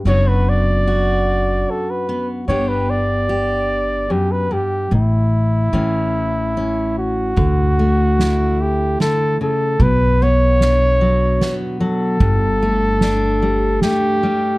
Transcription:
<<
  \new Staff \with { instrumentName = "Flugelhorn" } { \time 3/4 \key d \major \tempo 4 = 74 cis''16 b'16 d''4. a'16 b'8 r16 | cis''16 b'16 d''4. g'16 b'16 g'8 | e'2~ e'8 fis'8~ | fis'4. g'8 a'8 a'8 |
b'8 cis''4.~ cis''16 r16 a'8~ | a'2 g'4 | }
  \new Staff \with { instrumentName = "Steel-string acoustic guitar" } { \time 3/4 \key d \major << { <fis b d' fis'>4 fis'4. b8 | <b d' g'>4 g'2 | r4 <e cis'>4 cis'4 | r8 a8 e'2 |
r8 b8 d'4 b4 | r8 a8 d'4 a4 | } \\ { fis,2. | g,2 fis,8 g,8 | a,4 a,2 | d2 d8 cis8 |
b,4. fis4 fis8 | g,4. g4 g8 | } >> }
  \new Staff \with { instrumentName = "Upright bass" } { \clef bass \time 3/4 \key d \major fis,,2 r4 | g,,2 r4 | a,,4 a,,2 | d,2 r4 |
b,,2 r4 | g,,2 r4 | }
  \new DrumStaff \with { instrumentName = "Drums" } \drummode { \time 3/4 r4 r4 r4 | r4 r4 r4 | r4 r4 r4 | <bd cymr>4 sn4 <cymr sn>8 cymr8 |
<bd cymr>4 <cymr sn>4 <cymr sn>4 | <bd cymr>4 <cymr sn>4 <cymr sn>8 cymr8 | }
>>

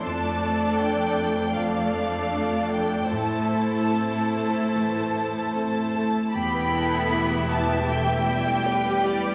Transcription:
<<
  \new Staff \with { instrumentName = "Violin section" } { \time 4/4 \key e \phrygian \tempo 4 = 78 a''4 g''4 f''4. g''8 | a''2. a''4 | b''4. a''8 g''4. d''8 | }
  \new Staff \with { instrumentName = "Violin section" } { \time 4/4 \key e \phrygian << { d''2 d''2 | c''2.~ c''8. r16 | g''4 e''2 b'4 | } \\ { a'2 a'2 | a'2.~ a'8. r16 | g'8 a'8 g'8 g'2~ g'8 | } >> }
  \new Staff \with { instrumentName = "Viola section" } { \time 4/4 \key e \phrygian << { d'2 d'2 | e'2.~ e'8. r16 | e'2 e'4 g'8 g'8 | } \\ { a2 a2 | a2.~ a8. r16 | b2 a8 g4. | } >> }
  \new Staff \with { instrumentName = "Grand piano" } { \time 4/4 \key e \phrygian f,8 <a a'>8 <d' a'>8 <a a'>8 f,8 <a a'>8 <d' a'>8 <a a'>8 | a,8 <a a'>8 <c' a'>8 <a a'>8 e8 <a a'>8 <c' a'>8 <a a'>8 | e,16 b'16 b16 a16 b16 b'16 e'16 b'16 b,16 b'16 b16 a16 b16 b'16 e'16 b'16 | }
  \new Staff \with { instrumentName = "Cello section" } { \clef bass \time 4/4 \key e \phrygian f,1 | a,2.~ a,8. r16 | e,1 | }
  \new Staff \with { instrumentName = "Double bass section" } { \clef bass \time 4/4 \key e \phrygian r1 | r1 | e,,1 | }
>>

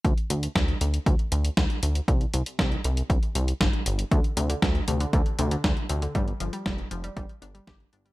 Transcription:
<<
  \new Staff \with { instrumentName = "Synth arpeggio sound" } { \clef bass \time 4/4 \key g \dorian \tempo 4 = 118 r1 | r1 | d16 r16 c16 d16 d16 r16 c16 d16 d16 r16 c16 d16 d16 r16 c16 d16 | g16 r16 f16 g16 g16 r16 f16 g16 g16 r16 d'16 g16 g'16 r16 d'16 g16 | }
  \new Staff \with { instrumentName = "Analog synth bass" } { \clef bass \time 4/4 \key g \dorian d,8 d,8 d,8 d,8 d,8 d,8 d,8 d,8 | c,8 c,8 c,8 c,8 c,8 c,8 g,,8 g,,8 | d,8 d,8 d,8 d,8 d,8 d,8 d,8 d,8 | g,,8 g,,8 f,,8 f,,8 g,,8 g,,8 g,,8 g,,8 | }
  \new DrumStaff \with { instrumentName = "Drums" } \drummode { \time 4/4 <hh bd>16 hh16 hh16 hh16 <hh bd sn>16 hh16 hh16 hh16 <hh bd>16 hh16 hh16 hh16 <hh bd sn>16 hh16 hh16 hh16 | <hh bd>16 hh16 hh16 hh16 <hh bd sn>16 hh16 hh16 hh16 <hh bd>16 hh16 hh16 hh16 <hh bd sn>16 hh16 hh16 hh16 | <hh bd>16 hh16 hh16 hh16 <hh bd sn>16 hh16 hh16 hh16 <hh bd>16 hh16 hh16 hh16 <hh bd sn>16 hh16 hh16 hh16 | <hh bd>16 hh16 hh16 hh16 <hh bd sn>16 hh16 hh16 hh16 <hh bd>16 hh16 hh16 hh16 <hh bd sn>16 hh16 hh16 hh16 | }
>>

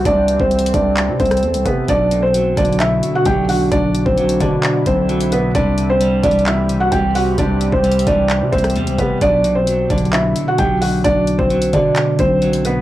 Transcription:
<<
  \new Staff \with { instrumentName = "Felt piano" } { \time 4/4 \key b \phrygian \tempo 4 = 131 <d' d''>8. <c' c''>8. <d' d''>4 <c' c''>4 <b b'>8 | <d' d''>8. <c' c''>8. <d' d''>8 <e' e''>8. <fis' fis''>16 <g' g''>8 <fis' fis''>8 | <d' d''>8. <c' c''>8. <d' d''>4 <c' c''>4 <b b'>8 | <d' d''>8. <c' c''>8. <d' d''>8 <e' e''>8. <fis' fis''>16 <g' g''>8 <fis' fis''>8 |
<d' d''>8. <c' c''>8. <d' d''>4 <c' c''>4 <b b'>8 | <d' d''>8. <c' c''>8. <d' d''>8 <e' e''>8. <fis' fis''>16 <g' g''>8 <fis' fis''>8 | <d' d''>8. <c' c''>8. <d' d''>4 <c' c''>4 <b b'>8 | }
  \new Staff \with { instrumentName = "Ambient pad" } { \time 4/4 \key b \phrygian << { a'1 | fis'1 | e'1 | g'1~ |
g'1 | r1 | r1 | } \\ { <e c'>1 | <d d'>1~ | <d d'>1 | <e c'>1~ |
<e c'>1 | r1 | r1 | } >> }
  \new Staff \with { instrumentName = "Clean electric guitar" } { \clef bass \time 4/4 \key b \phrygian r1 | b,8 b,8 fis8 d8 b,8 b,8 fis8 d8~ | d4 fis8 d4. fis8 b,8 | c8 c8 g8 e8 c8 c8 g8 c8 |
c8 c8 g8 e8 c8 c8 g8 c8 | b,8 b,8 fis8 d8 b,8 b,8 fis8 d8~ | d4 fis8 d4. fis8 b,8 | }
  \new Staff \with { instrumentName = "808-style bass" } { \clef bass \time 4/4 \key b \phrygian c,8. c,8. c,8. c16 c,8 e,16 c,16 c8 | b,,4. b,,4 r8 b,,4 | b,,8. b,,8. b,4 b,,4. | c,4. c,4. c,4 |
c,8. c,8. c,8. c16 c,8 e,16 c,16 c8 | b,,4. b,,4 r8 b,,4 | b,,8. b,,8. b,4 b,,4. | }
  \new DrumStaff \with { instrumentName = "Drums" } \drummode { \time 4/4 <hh bd>8 hh16 bd16 \tuplet 3/2 { hh16 hh16 hh16 <hh bd>16 r16 r16 } <hc hh>8 <hh bd>32 hh32 <hh ss>32 hh32 hh16 hh16 <hh bd>8 | <hh bd>8 hh8 \tuplet 3/2 { hh16 r16 r16 <hh bd>16 hh16 hh16 } <hc hh>8 hh8 <hh bd>8 hho8 | <hh bd>8 hh16 bd16 hh16 hh16 <hh bd>8 <hc hh>8 <hh bd>8 hh16 hh16 hh8 | <hh bd>8 hh8 \tuplet 3/2 { hh16 r16 r16 <hh bd>16 hh16 hh16 } <hc hh>8 hh8 <hh bd>8 hho8 |
<hh bd>8 hh16 bd16 \tuplet 3/2 { hh16 hh16 hh16 <hh bd>16 r16 r16 } <hc hh>8 <hh bd>32 hh32 <hh ss>32 hh32 hh16 hh16 <hh bd>8 | <hh bd>8 hh8 \tuplet 3/2 { hh16 r16 r16 <hh bd>16 hh16 hh16 } <hc hh>8 hh8 <hh bd>8 hho8 | <hh bd>8 hh16 bd16 hh16 hh16 <hh bd>8 <hc hh>8 <hh bd>8 hh16 hh16 hh8 | }
>>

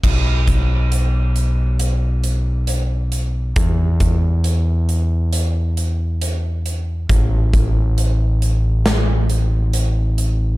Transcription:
<<
  \new Staff \with { instrumentName = "Fingered electric bass" } { \clef bass \time 4/4 \key b \minor \tempo 4 = 68 b,,1 | e,1 | a,,1 | }
  \new DrumStaff \with { instrumentName = "Drums" } \drummode { \time 4/4 <cymc bd>8 <hh bd>8 hh8 hh8 hh8 hh8 hh8 hh8 | <hh bd>8 <hh bd>8 hh8 hh8 hh8 hh8 hh8 hh8 | <hh bd>8 <hh bd>8 hh8 hh8 <hh sn>8 hh8 hh8 hh8 | }
>>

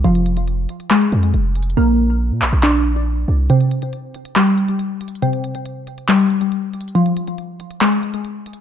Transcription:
<<
  \new Staff \with { instrumentName = "Synth pluck" } { \clef bass \time 4/4 \key f \dorian \tempo 4 = 139 f2 aes2 | bes2 d'2 | c2 g2 | c2 g2 |
f2 aes2 | }
  \new Staff \with { instrumentName = "808-style bass" } { \clef bass \time 4/4 \key f \dorian f,,4. r4 f,8 f,,4 | bes,,4~ bes,,16 bes,16 bes,,16 bes,,4.~ bes,,16 c,8 | r1 | r1 |
r1 | }
  \new DrumStaff \with { instrumentName = "Drums" } \drummode { \time 4/4 hh16 hh16 hh16 hh16 hh8 hh16 hh16 <hc hh>16 hh16 hh16 hh16 \tuplet 3/2 { hh16 r16 r16 hh16 hh16 hh16 } | r4 r8 hc8 hc4 r4 | hh16 hh16 hh16 hh16 hh8 hh16 hh16 <hc hh>16 hh16 hh16 hh16 \tuplet 3/2 { hh16 r16 r16 hh16 hh16 hh16 } | hh16 hh16 hh16 hh16 hh8 hh16 hh16 <hc hh>16 hh16 hh16 hh16 \tuplet 3/2 { hh16 r16 r16 hh16 hh16 hh16 } |
hh16 hh16 hh16 hh16 hh8 hh16 hh16 <hc hh>16 hh16 hh16 hh16 \tuplet 3/2 { hh16 r16 r16 hh16 hh16 r16 } | }
>>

